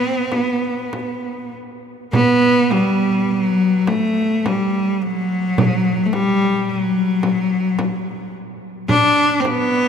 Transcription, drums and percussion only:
0.32 frame drum
0.93 frame drum
2.13 frame drum
2.71 frame drum
3.87 frame drum
4.46 frame drum
5.58 frame drum
6.13 frame drum
7.23 frame drum
7.79 frame drum
8.89 frame drum
9.45 frame drum

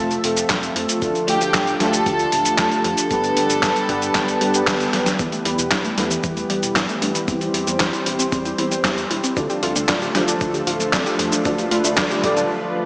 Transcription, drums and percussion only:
0.11 closed hi-hat, cabasa
0.24 closed hi-hat
0.37 closed hi-hat, cabasa
0.50 kick, snare, clap, closed hi-hat, cabasa
0.63 closed hi-hat, cabasa
0.76 closed hi-hat
0.89 closed hi-hat, cabasa
1.02 kick, closed hi-hat, cabasa
1.15 closed hi-hat, cabasa
1.28 closed hi-hat
1.41 closed hi-hat, cabasa
1.54 kick, snare, clap, closed hi-hat, cabasa
1.67 closed hi-hat, cabasa
1.80 snare, closed hi-hat
1.93 closed hi-hat, cabasa
2.06 kick, closed hi-hat, cabasa
2.19 closed hi-hat, cabasa
2.32 closed hi-hat
2.45 closed hi-hat, cabasa
2.58 kick, snare, clap, closed hi-hat, cabasa
2.71 closed hi-hat, cabasa
2.84 closed hi-hat
2.98 closed hi-hat, cabasa
3.11 kick, closed hi-hat, cabasa
3.24 closed hi-hat, cabasa
3.37 closed hi-hat
3.50 closed hi-hat, cabasa
3.63 kick, snare, clap, closed hi-hat, cabasa
3.76 closed hi-hat, cabasa
3.89 kick, closed hi-hat
4.02 closed hi-hat, cabasa
4.15 kick, snare, clap, closed hi-hat, cabasa
4.28 closed hi-hat, cabasa
4.41 closed hi-hat
4.54 closed hi-hat, cabasa
4.67 kick, snare, clap, closed hi-hat, cabasa
4.80 closed hi-hat, cabasa
4.93 snare, closed hi-hat
5.06 snare, closed hi-hat, cabasa
5.19 kick, closed hi-hat, cabasa
5.32 closed hi-hat, cabasa
5.45 closed hi-hat
5.59 closed hi-hat, cabasa
5.72 kick, snare, clap, closed hi-hat, cabasa
5.85 closed hi-hat, cabasa
5.98 snare, closed hi-hat
6.11 closed hi-hat, cabasa
6.24 kick, closed hi-hat, cabasa
6.37 closed hi-hat, cabasa
6.50 closed hi-hat
6.63 closed hi-hat, cabasa
6.76 kick, snare, clap, closed hi-hat, cabasa
6.89 closed hi-hat, cabasa
7.02 closed hi-hat
7.15 closed hi-hat, cabasa
7.28 kick, closed hi-hat, cabasa
7.41 closed hi-hat, cabasa
7.54 closed hi-hat
7.67 closed hi-hat, cabasa
7.80 kick, snare, clap, closed hi-hat, cabasa
7.93 closed hi-hat, cabasa
8.06 closed hi-hat
8.19 closed hi-hat, cabasa
8.32 kick, closed hi-hat, cabasa
8.45 closed hi-hat, cabasa
8.58 closed hi-hat
8.72 closed hi-hat, cabasa
8.85 kick, snare, clap, closed hi-hat, cabasa
8.98 closed hi-hat, cabasa
9.11 closed hi-hat
9.24 closed hi-hat, cabasa
9.37 kick, closed hi-hat, cabasa
9.50 closed hi-hat, cabasa
9.63 closed hi-hat
9.76 closed hi-hat, cabasa
9.89 kick, snare, clap, closed hi-hat, cabasa
10.02 closed hi-hat, cabasa
10.15 snare, closed hi-hat
10.28 closed hi-hat, cabasa
10.41 kick, closed hi-hat, cabasa
10.54 closed hi-hat, cabasa
10.67 closed hi-hat
10.80 closed hi-hat, cabasa
10.93 kick, snare, clap, closed hi-hat, cabasa
11.06 closed hi-hat, cabasa
11.19 closed hi-hat
11.32 closed hi-hat, cabasa
11.45 kick, closed hi-hat, cabasa
11.58 closed hi-hat, cabasa
11.71 closed hi-hat
11.84 closed hi-hat, cabasa
11.98 kick, snare, clap, closed hi-hat, cabasa
12.11 closed hi-hat, cabasa
12.24 kick, closed hi-hat
12.37 closed hi-hat, cabasa

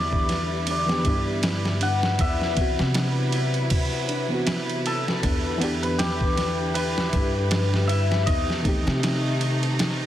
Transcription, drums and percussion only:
0.13 kick
0.29 snare, ride
0.67 ride
0.89 snare
1.05 kick, ride
1.43 snare, ride
1.65 snare
1.81 ride
2.03 snare
2.19 kick, ride
2.42 snare
2.57 kick, ride
2.79 snare
2.94 snare, ride
3.32 ride
3.54 ride
3.70 kick, ride
4.09 ride
4.47 snare, ride
4.69 ride
4.86 ride
5.08 snare
5.23 kick, ride
5.61 ride
5.83 ride
5.99 snare, ride
6.21 kick
6.37 snare, ride
6.75 ride
6.98 snare
7.13 kick, ride
7.51 snare, ride
7.74 snare
7.89 ride
8.12 snare
8.27 kick, ride
8.50 snare
8.65 kick, ride
8.88 snare
9.03 snare, ride
9.41 ride
9.63 ride
9.79 snare, ride

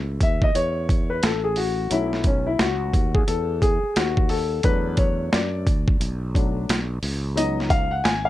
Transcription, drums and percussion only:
0.21 kick, closed hi-hat
0.42 kick
0.55 closed hi-hat
0.89 kick, closed hi-hat
1.23 snare, closed hi-hat
1.56 open hi-hat
1.91 closed hi-hat
2.13 snare
2.24 kick, closed hi-hat
2.59 snare, closed hi-hat
2.94 kick, closed hi-hat
3.15 kick
3.28 closed hi-hat
3.62 kick, closed hi-hat
3.96 snare, closed hi-hat
4.17 kick
4.29 open hi-hat
4.63 kick, closed hi-hat
4.97 kick, closed hi-hat
5.33 snare, closed hi-hat
5.67 kick, closed hi-hat
5.88 kick
6.01 closed hi-hat
6.35 kick, closed hi-hat
6.69 snare, closed hi-hat
7.03 open hi-hat
7.37 closed hi-hat
7.60 snare
7.70 kick, closed hi-hat
8.05 snare, closed hi-hat

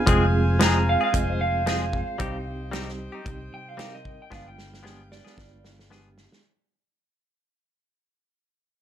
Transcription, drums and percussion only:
0.07 kick, closed hi-hat
0.60 snare, closed hi-hat
1.14 kick, closed hi-hat
1.67 snare, closed hi-hat
1.93 kick
2.20 kick, closed hi-hat
2.73 snare, closed hi-hat
2.88 snare
3.26 kick, closed hi-hat
3.79 snare, closed hi-hat
4.05 kick
4.32 kick, snare
4.59 snare
4.74 snare
4.86 snare
5.12 snare
5.26 snare
5.38 kick, snare
5.65 snare
5.79 snare
5.91 snare
6.18 snare
6.32 snare

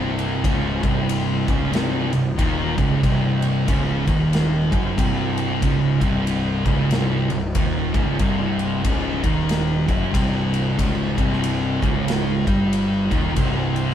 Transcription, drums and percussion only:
0.19 ride
0.44 kick, ride
0.83 kick, ride
1.09 ride
1.48 kick, ride
1.73 snare, ride
2.13 ride
2.39 kick, ride
2.78 kick, ride
3.03 kick, ride
3.42 ride
3.68 kick, ride
4.07 kick, ride
4.33 snare, ride
4.72 kick, ride
4.98 kick, ride
5.38 ride
5.62 kick, ride
6.01 kick, ride
6.27 ride
6.66 kick, ride
6.91 snare, ride
7.30 ride
7.55 kick, ride
7.94 kick, ride
8.19 kick, ride
8.59 ride
8.85 kick, ride
9.24 kick, ride
9.49 snare, ride
9.88 kick, ride
10.14 kick, ride
10.54 ride
10.79 kick, ride
11.18 kick, ride
11.33 snare
11.44 ride
11.82 kick, ride
12.08 snare, ride
12.47 kick, ride
12.73 ride
13.11 kick, ride
13.36 kick, ride
13.76 ride
13.91 snare

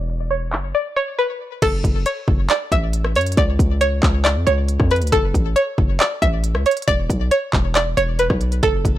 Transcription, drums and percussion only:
0.10 closed hi-hat
0.31 closed hi-hat
0.53 clap
1.62 kick, closed hi-hat, crash
1.84 kick, closed hi-hat
2.06 closed hi-hat
2.28 kick
2.50 clap, closed hi-hat
2.72 kick, closed hi-hat
2.93 closed hi-hat
3.04 cross-stick
3.16 closed hi-hat
3.21 closed hi-hat
3.26 closed hi-hat
3.32 closed hi-hat
3.37 kick, closed hi-hat
3.59 kick, closed hi-hat
3.81 closed hi-hat
4.03 kick, clap
4.25 clap, closed hi-hat
4.47 closed hi-hat
4.68 closed hi-hat
4.80 kick, cross-stick
4.91 closed hi-hat
4.96 closed hi-hat
5.02 closed hi-hat
5.07 closed hi-hat
5.12 kick, closed hi-hat
5.34 kick, closed hi-hat
5.56 closed hi-hat
5.78 kick
6.00 clap, closed hi-hat
6.22 kick, closed hi-hat
6.44 closed hi-hat
6.55 cross-stick
6.66 closed hi-hat
6.71 closed hi-hat
6.77 closed hi-hat
6.82 closed hi-hat
6.88 kick, closed hi-hat
7.10 kick, closed hi-hat
7.31 closed hi-hat
7.53 kick, clap
7.75 clap, closed hi-hat
7.97 closed hi-hat
8.19 closed hi-hat
8.30 kick, cross-stick
8.41 closed hi-hat, open hi-hat
8.52 closed hi-hat
8.63 kick, closed hi-hat
8.85 kick, closed hi-hat

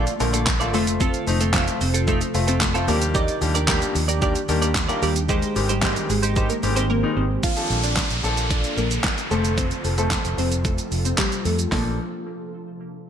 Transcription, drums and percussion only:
0.07 closed hi-hat, shaker
0.20 open hi-hat, shaker
0.34 closed hi-hat, shaker
0.46 kick, snare, clap, shaker
0.61 closed hi-hat, shaker
0.74 open hi-hat, shaker
0.87 closed hi-hat, shaker
1.01 kick, shaker
1.14 closed hi-hat, shaker
1.27 open hi-hat, shaker
1.41 closed hi-hat, shaker
1.53 kick, snare, clap, shaker
1.68 closed hi-hat, shaker
1.81 open hi-hat, shaker
1.94 closed hi-hat, shaker
2.08 kick, shaker
2.21 closed hi-hat, shaker
2.35 open hi-hat, shaker
2.48 closed hi-hat, shaker
2.61 kick, snare, clap, shaker
2.75 closed hi-hat, shaker
2.88 open hi-hat, shaker
3.02 closed hi-hat, shaker
3.15 kick, shaker
3.28 closed hi-hat, shaker
3.42 open hi-hat, shaker
3.55 closed hi-hat, shaker
3.68 kick, snare, clap, shaker
3.82 closed hi-hat, shaker
3.95 open hi-hat, shaker
4.09 closed hi-hat, shaker
4.22 kick, shaker
4.35 closed hi-hat, shaker
4.49 open hi-hat, shaker
4.62 closed hi-hat, shaker
4.75 kick, snare, clap, shaker
4.89 closed hi-hat, shaker
5.03 open hi-hat, shaker
5.16 closed hi-hat, shaker
5.29 kick, shaker
5.42 closed hi-hat, shaker
5.56 open hi-hat, shaker
5.69 closed hi-hat, shaker
5.82 kick, snare, clap, shaker
5.96 closed hi-hat, shaker
6.10 open hi-hat, shaker
6.23 closed hi-hat, shaker
6.36 kick, shaker
6.50 closed hi-hat, shaker
6.63 open hi-hat, shaker
6.77 closed hi-hat, shaker
7.43 kick, closed hi-hat, shaker
7.57 closed hi-hat, shaker
7.70 shaker
7.83 closed hi-hat, shaker
7.96 kick, snare, clap, closed hi-hat, shaker
8.10 closed hi-hat, shaker
8.24 shaker
8.37 closed hi-hat, shaker
8.51 kick, closed hi-hat, shaker
8.64 closed hi-hat, shaker
8.78 shaker
8.91 closed hi-hat, shaker
9.04 kick, snare, clap, closed hi-hat, shaker
9.18 closed hi-hat, shaker
9.31 shaker
9.45 closed hi-hat, shaker
9.58 kick, closed hi-hat, shaker
9.71 closed hi-hat, shaker
9.85 open hi-hat, shaker
9.98 closed hi-hat, shaker
10.11 kick, snare, clap, closed hi-hat, shaker
10.25 closed hi-hat, shaker
10.38 open hi-hat, shaker
10.52 closed hi-hat, shaker
10.65 kick, closed hi-hat, shaker
10.78 closed hi-hat, shaker
10.92 open hi-hat, shaker
11.05 closed hi-hat, shaker
11.18 kick, snare, clap, closed hi-hat, shaker
11.32 closed hi-hat, shaker
11.45 open hi-hat, shaker
11.59 closed hi-hat, shaker
11.72 kick, snare, open hi-hat

